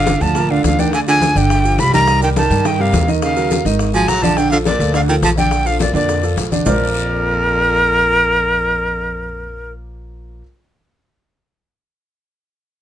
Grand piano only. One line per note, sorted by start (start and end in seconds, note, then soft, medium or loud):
0.00 0.16 D3 medium
0.00 0.16 D4 medium
0.00 0.16 F4 medium
0.21 0.33 D3 medium
0.21 0.33 D4 medium
0.21 0.33 F4 medium
0.36 0.47 A#2 medium
0.36 0.47 A#3 medium
0.36 0.48 A#4 medium
0.51 0.74 D3 medium
0.51 0.74 D4 medium
0.51 0.74 F4 medium
0.79 1.02 D3 medium
0.79 1.02 D4 medium
0.79 1.02 D5 medium
1.07 1.31 F3 medium
1.07 1.31 F4 medium
1.07 1.31 G#4 medium
1.36 1.59 D3 medium
1.36 1.60 D4 medium
1.36 1.60 D5 medium
1.65 1.88 F3 medium
1.65 1.88 F4 medium
1.65 1.89 G4 medium
1.93 2.05 D#3 medium
1.93 2.05 D#4 medium
1.93 2.05 D#5 medium
2.08 2.19 D#3 medium
2.08 2.19 D#4 medium
2.08 2.20 D#5 medium
2.22 2.45 G3 medium
2.22 2.46 G4 medium
2.22 2.46 A#4 medium
2.51 2.62 G3 medium
2.51 2.63 G4 medium
2.51 2.63 A#4 medium
2.65 2.77 D#3 medium
2.65 2.77 D#4 medium
2.65 2.77 D#5 medium
2.79 3.03 G3 medium
2.79 3.03 G4 medium
2.79 3.03 A#4 medium
3.08 3.32 D#3 medium
3.08 3.32 D#4 medium
3.08 3.32 D#5 medium
3.36 3.60 F#3 medium
3.36 3.60 F#4 medium
3.36 3.60 A#4 medium
3.65 3.89 D#3 medium
3.65 3.89 D#4 medium
3.65 3.89 D#5 medium
3.94 4.18 F#3 medium
3.94 4.18 F#4 medium
3.94 4.18 G#4 medium
4.22 4.34 D3 medium
4.22 4.35 D4 medium
4.22 4.35 D5 medium
4.37 4.49 D3 medium
4.37 4.49 D4 medium
4.37 4.49 D5 medium
4.51 4.75 F3 medium
4.51 4.75 F4 medium
4.51 4.75 A4 medium
4.80 4.92 F3 medium
4.80 4.92 F4 medium
4.80 4.92 A4 medium
4.94 5.06 D3 medium
4.94 5.06 D4 medium
4.94 5.06 D5 medium
5.08 5.32 F3 medium
5.08 5.32 F4 medium
5.08 5.32 A4 medium
5.37 5.61 D3 medium
5.37 5.61 D4 medium
5.37 5.61 D5 medium
5.65 5.89 F3 medium
5.65 5.89 F4 medium
5.65 5.90 A4 medium
5.94 6.18 D3 medium
5.94 6.18 D4 medium
5.94 6.18 D5 medium
6.23 6.47 F3 medium
6.23 6.47 F4 medium
6.23 6.47 A4 medium
6.52 6.64 D3 medium
6.52 6.64 D4 medium
6.52 6.64 D5 medium
6.66 10.41 A#3 medium
6.66 10.41 F4 medium
6.66 10.41 A#4 medium
6.66 10.41 C5 medium
6.66 10.41 D5 loud